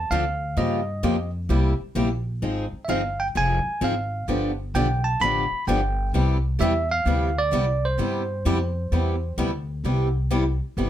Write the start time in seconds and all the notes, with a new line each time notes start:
Already playing: A5
0.11 D2 D3 F3 C4 D4 A4 F5
0.57 G2 C#3 F3 A#3 F4 G4 D#5
1.03 F2 C#3 F3 A#3 F4 G4
1.49 C2 C3 G3 A#3 E4 G4
1.80 muted upright bass stroke
1.95 A#1 C3 G3 A#3 E4 G4
2.42 G#1 F3 C4 D#4 G#4
2.72 muted upright bass stroke
2.85 G1 E5
2.89 F3 C4 D#4 G#4 F5
3.20 G5
3.35 F1 F3 C4 D#4 G#4 G#5
3.65 muted upright bass stroke
3.81 G#1 F3 C4 D#4 G#4 F5
4.28 G1 D3 F3 B3 D4 G4
4.74 B1 D3 F3 B3 D4 G4 G5
5.04 A5
5.21 A1 D3 F3 B3 D4 G4 B5
5.51 muted upright bass stroke
5.67 G1 D3 F3 B3 D4 G4 G5
6.13 C2 C3 G3 B3 E4 G4
6.60 E2 C3 G3 B3 E4 G4 E5
6.91 F5
7.06 D2 C3 G3 B3 E4 G4
7.38 D5
7.52 C2 C3 G3 B3 E4 G4
7.85 C5
7.99 G2 C3 G3 B3 E4 G4
8.45 F2 C3 G3 B3 E4 G4
8.92 E2 C3 G3 B3 E4 G4
9.38 D2 C3 G3 B3 E4 G4
9.84 C2 C3 G3 B3 E4 G4
10.31 C3 G3 B3 E4 G4
10.77 G1 C3 G3 B3 E4 G4